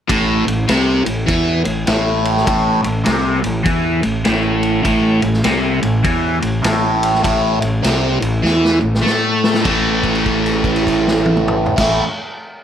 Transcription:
0.08 fingered electric bass A1, overdriven electric guitar A2, kick, ride
0.47 fingered electric bass A1, overdriven electric guitar A2, ride
0.68 fingered electric bass C2, overdriven electric guitar C3, snare, ride
1.05 fingered electric bass A1, overdriven electric guitar A2, ride
1.27 fingered electric bass E2, overdriven electric guitar E3, kick, ride
1.64 fingered electric bass A1, overdriven electric guitar A2, ride
1.87 fingered electric bass A1, overdriven electric guitar A2, snare, ride
2.25 ride
2.37 snare
2.46 fingered electric bass A1, overdriven electric guitar A2, kick, ride
2.83 fingered electric bass A1, overdriven electric guitar A2, ride
3.05 fingered electric bass C2, overdriven electric guitar C3, snare, ride
3.43 fingered electric bass A1, overdriven electric guitar A2, ride
3.64 fingered electric bass E2, overdriven electric guitar E3, kick, ride
4.03 fingered electric bass A1, overdriven electric guitar A2, ride
4.25 fingered electric bass A1, overdriven electric guitar A2, snare, ride
4.63 ride
4.83 fingered electric bass A1, overdriven electric guitar A2, kick, ride
5.22 fingered electric bass A1, overdriven electric guitar A2, ride
5.33 snare
5.44 fingered electric bass C2, overdriven electric guitar C3, snare, ride
5.82 fingered electric bass A1, overdriven electric guitar A2, ride
6.03 fingered electric bass E2, overdriven electric guitar E3, kick, ride
6.41 fingered electric bass A1, overdriven electric guitar A2, ride
6.63 fingered electric bass A1, overdriven electric guitar A2, snare, ride
7.03 ride
7.14 snare
7.23 fingered electric bass A1, overdriven electric guitar A2, kick, ride
7.60 fingered electric bass A1, overdriven electric guitar A2, ride
7.83 fingered electric bass C2, overdriven electric guitar C3, snare, ride
8.21 fingered electric bass A1, overdriven electric guitar A2, ride
8.43 fingered electric bass E2, overdriven electric guitar E3, snare
8.65 snare
8.81 fingered electric bass A1, overdriven electric guitar A2
8.95 snare
9.03 fingered electric bass A2, overdriven electric guitar A3, snare
9.44 snare
9.54 snare
9.62 fingered electric bass A1, overdriven electric guitar A2 E3, kick, crash
9.66 overdriven electric guitar A3
10.03 kick, crash
10.15 crash
10.26 kick, crash
10.46 crash
10.64 kick, crash
10.76 crash
10.87 kick, crash
11.08 snare
11.26 high tom
11.37 mid tom
11.48 mid tom
11.66 floor tom
11.76 fingered electric bass A1, overdriven electric guitar A2 E3, kick, snare, crash
11.81 overdriven electric guitar A3

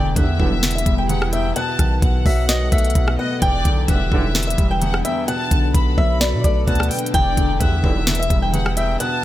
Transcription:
Already playing: 808-style bass E1, felt piano E2 D3, ambient pad D3 B3 E4 G4, violin section D5, steel-string acoustic guitar G5
0.16 brass ensemble B1 G2 D3, felt piano E2, 808-style bass E2, violin section E5, steel-string acoustic guitar F#5, kick, closed hi-hat
0.40 808-style bass E1, brass ensemble B1 G2 D3, felt piano E3, kick
0.63 felt piano E2, snare, closed hi-hat
0.71 closed hi-hat
0.75 steel-string acoustic guitar E5, closed hi-hat
0.86 808-style bass E1, felt piano G3, kick, closed hi-hat
0.98 steel-string acoustic guitar G5
1.09 felt piano E2, violin section F#5, closed hi-hat
1.22 cross-stick
1.33 felt piano B3, steel-string acoustic guitar E5, violin section G5, closed hi-hat
1.56 felt piano B2, ambient pad D#3 F#4 A4, steel-string acoustic guitar F#5, violin section A5, closed hi-hat
1.79 808-style bass B1, felt piano D#3, kick, cross-stick, closed hi-hat
2.02 808-style bass B1, felt piano B2, violin section F#5, kick, closed hi-hat
2.26 808-style bass B1, felt piano F#3, steel-string acoustic guitar E5, kick, open hi-hat
2.49 felt piano B2, steel-string acoustic guitar D#5, snare, closed hi-hat
2.72 808-style bass B1, felt piano A3, steel-string acoustic guitar E5, kick, closed hi-hat
2.78 closed hi-hat
2.85 closed hi-hat
2.90 closed hi-hat
2.95 808-style bass B1, felt piano B2, kick, closed hi-hat
3.08 cross-stick
3.18 felt piano B3, violin section D#5, steel-string acoustic guitar F#5
3.42 808-style bass E1, felt piano E2, ambient pad E3 D4 G4 B4, violin section D5, steel-string acoustic guitar G5, kick, closed hi-hat
3.65 808-style bass B1, felt piano D3, kick, closed hi-hat
3.88 808-style bass E1, brass ensemble B1 G2 D3, felt piano E2, violin section E5, steel-string acoustic guitar F#5, kick, closed hi-hat
4.12 808-style bass E1, brass ensemble B1 G2 D3, felt piano E3, kick
4.35 felt piano E2, snare, closed hi-hat
4.43 closed hi-hat
4.47 steel-string acoustic guitar E5, closed hi-hat
4.58 808-style bass E1, felt piano G3, kick, closed hi-hat
4.71 steel-string acoustic guitar G5
4.82 felt piano E2, violin section F#5, closed hi-hat
4.94 cross-stick
5.05 felt piano B3, steel-string acoustic guitar E5, violin section G5, closed hi-hat
5.27 felt piano B2, ambient pad F#3 A4, steel-string acoustic guitar F#5, violin section A5, closed hi-hat
5.51 808-style bass B1, felt piano D3, kick, closed hi-hat
5.75 808-style bass B1, felt piano B2, violin section B5, kick, closed hi-hat
5.98 808-style bass B1, felt piano F#3, steel-string acoustic guitar E5, kick
6.21 felt piano B2, steel-string acoustic guitar D5, snare, closed hi-hat
6.33 808-style bass B2
6.44 808-style bass B1, felt piano A3, steel-string acoustic guitar D5, kick, closed hi-hat
6.67 808-style bass D2, felt piano B2, steel-string acoustic guitar F#5, violin section A5, kick, closed hi-hat
6.75 closed hi-hat
6.80 cross-stick, closed hi-hat
6.91 felt piano B3, violin section G5, closed hi-hat, open hi-hat
6.99 closed hi-hat
7.06 closed hi-hat
7.14 808-style bass E1, felt piano E2, ambient pad E3 G4, violin section D5, steel-string acoustic guitar G5, kick, closed hi-hat
7.37 808-style bass E1, felt piano D3, kick, closed hi-hat
7.60 brass ensemble B1 G2 D3, felt piano E2, 808-style bass E2, violin section E5, steel-string acoustic guitar F#5, kick, closed hi-hat
7.84 808-style bass E1, brass ensemble B1 G2 D3, felt piano E3, kick
8.07 felt piano E2, snare, closed hi-hat
8.15 closed hi-hat
8.19 steel-string acoustic guitar E5, closed hi-hat
8.30 808-style bass E1, felt piano G3, kick, closed hi-hat
8.42 steel-string acoustic guitar G5
8.53 felt piano E2, violin section F#5, closed hi-hat
8.66 cross-stick
8.77 felt piano B3, steel-string acoustic guitar E5, violin section G5, closed hi-hat
9.00 felt piano B2, steel-string acoustic guitar F#5, violin section A5, closed hi-hat

